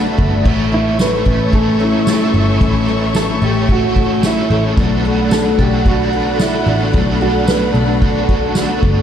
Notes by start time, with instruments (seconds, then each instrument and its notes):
Already playing: picked electric bass B1, twelve-string acoustic guitar A3 D4 F#4, overdriven electric guitar B3 D4 F#4 A4, clean electric guitar A4, string section A4 D5 E5 B5, synth texture E5
0.18 picked electric bass G1, twelve-string acoustic guitar D4, kick
0.45 picked electric bass A1, overdriven electric guitar A2 E3 A3 C#4 E4 A4, twelve-string acoustic guitar E3, string section A4 C#5 E5 C#6, kick, crash
0.72 twelve-string acoustic guitar E3, clean electric guitar E4
0.99 twelve-string acoustic guitar A3, clean electric guitar B4, snare, ride, tambourine
1.25 picked electric bass A1, overdriven electric guitar A3 C#4 E4 A4, twelve-string acoustic guitar C#4, kick
1.53 overdriven electric guitar A3 C#4 E4 A4, twelve-string acoustic guitar A3, clean electric guitar A4, kick, ride
1.80 twelve-string acoustic guitar C#4, clean electric guitar E4
2.06 twelve-string acoustic guitar E3, overdriven electric guitar A3 C#4 E4, snare, ride, tambourine
2.11 overdriven electric guitar A4
2.34 picked electric bass G1, twelve-string acoustic guitar A3
2.61 picked electric bass A1, overdriven electric guitar A2 E3 A3 C#4 E4 A4, twelve-string acoustic guitar E3, kick, ride
2.88 twelve-string acoustic guitar E3
3.15 twelve-string acoustic guitar A3, clean electric guitar A4, snare, ride, tambourine
3.42 picked electric bass A1, twelve-string acoustic guitar C#4, overdriven electric guitar C#4 E4 A4, clean electric guitar G4
3.46 overdriven electric guitar A3
3.68 overdriven electric guitar A3 C#4 E4, twelve-string acoustic guitar A3, clean electric guitar F#4, kick, ride
3.73 overdriven electric guitar A4
3.96 twelve-string acoustic guitar C#4, kick
4.22 twelve-string acoustic guitar E3, overdriven electric guitar A3 C#4 E4, snare, ride, tambourine
4.26 clean electric guitar E4, overdriven electric guitar A4
4.50 picked electric bass A1, twelve-string acoustic guitar A3
4.76 picked electric bass B1, twelve-string acoustic guitar A3, overdriven electric guitar B3 D4 F#4 A4, string section D5 F#5 B5, kick
5.05 twelve-string acoustic guitar A3
5.31 twelve-string acoustic guitar D4, clean electric guitar A4, snare, ride, tambourine
5.58 picked electric bass B1, twelve-string acoustic guitar F#4, overdriven electric guitar F#4 A4, clean electric guitar G4, kick
5.62 overdriven electric guitar D4
5.85 overdriven electric guitar B3 D4 F#4, twelve-string acoustic guitar D4, clean electric guitar F#4, kick, ride
5.89 overdriven electric guitar A4
6.13 twelve-string acoustic guitar F#4
6.39 twelve-string acoustic guitar A3, overdriven electric guitar B3 D4 F#4, clean electric guitar E4, snare, tambourine
6.44 overdriven electric guitar A4
6.67 picked electric bass A1, twelve-string acoustic guitar D4
6.93 picked electric bass B1, twelve-string acoustic guitar A3, overdriven electric guitar B3 D4 F#4, kick, ride
6.99 overdriven electric guitar A4
7.21 twelve-string acoustic guitar A3, clean electric guitar F#4
7.47 twelve-string acoustic guitar D4, clean electric guitar B4, snare, tambourine
7.74 picked electric bass B1, twelve-string acoustic guitar F#4, clean electric guitar A4
8.02 overdriven electric guitar B3 D4 F#4, twelve-string acoustic guitar D4, kick, ride
8.06 overdriven electric guitar A4
8.29 twelve-string acoustic guitar F#4, kick
8.55 twelve-string acoustic guitar A3, overdriven electric guitar B3 D4 F#4, snare, ride, tambourine
8.60 overdriven electric guitar A4
8.83 picked electric bass G1, twelve-string acoustic guitar D4, kick